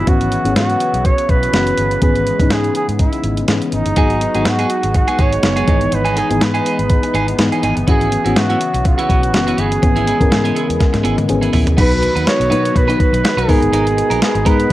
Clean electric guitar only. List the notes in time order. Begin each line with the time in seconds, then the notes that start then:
3.97 B3 F#4 G#4
4.21 muted clean electric guitar stroke
4.35 B3 F#4 G#4
4.46 muted clean electric guitar stroke
4.59 B3 F#4 G#4
4.70 muted clean electric guitar stroke
4.83 muted clean electric guitar stroke
4.95 muted clean electric guitar stroke
5.08 B3 F#4 G#4
5.18 B3 F#4 G#4
5.43 muted clean electric guitar stroke
5.56 B3 F#4 G#4
5.68 B3 D#4 G#4
5.81 muted clean electric guitar stroke
5.92 muted clean electric guitar stroke
6.05 B3 D#4 G#4
6.16 B3 D#4 G#4
6.30 muted clean electric guitar stroke
6.41 muted clean electric guitar stroke
6.54 B3 D#4 G#4
6.65 B3 D#4 G#4
6.79 muted clean electric guitar stroke
7.04 muted clean electric guitar stroke
7.14 B3 D#4 G#4
7.28 muted clean electric guitar stroke
7.38 muted clean electric guitar stroke
7.52 B3 D#4 G#4
7.63 B3 D#4 G#4
7.77 muted clean electric guitar stroke
7.87 B3 E4 F#4
8.12 muted clean electric guitar stroke
8.25 B3 E4 F#4
8.50 B3 E4 F#4
8.74 muted clean electric guitar stroke
8.85 muted clean electric guitar stroke
8.98 B3 E4 F#4
9.09 B3 E4 F#4
9.23 muted clean electric guitar stroke
9.34 muted clean electric guitar stroke
9.47 B3 E4 F#4
9.58 B3 E4 F#4
9.71 muted clean electric guitar stroke
9.82 muted clean electric guitar stroke
9.96 B3 E4 G#4
10.06 B3 E4 G#4
10.30 muted clean electric guitar stroke
10.44 B3 E4 G#4
10.55 B3 E4 G#4
10.68 muted clean electric guitar stroke
10.80 muted clean electric guitar stroke
10.93 muted clean electric guitar stroke
11.04 B3 E4 G#4
11.17 muted clean electric guitar stroke
11.29 muted clean electric guitar stroke
11.42 B3 E4 G#4
11.53 B3 E4 G#4
11.66 muted clean electric guitar stroke
11.77 D#4 F#4 B4
11.91 muted clean electric guitar stroke
12.02 muted clean electric guitar stroke
12.15 D#4 F#4 B4
12.26 muted clean electric guitar stroke
12.39 muted clean electric guitar stroke
12.50 D#4 F#4 B4
12.64 muted clean electric guitar stroke
12.75 muted clean electric guitar stroke
12.88 D#4 F#4 B4
12.99 muted clean electric guitar stroke
13.13 muted clean electric guitar stroke
13.24 muted clean electric guitar stroke
13.37 D#4 F#4 B4
13.48 B3 D#4 A#4
13.62 muted clean electric guitar stroke
13.73 B3 D#4 A#4
13.97 muted clean electric guitar stroke
14.10 B3 D#4 A#4
14.35 muted clean electric guitar stroke
14.45 B3 D#4 A#4
14.59 muted clean electric guitar stroke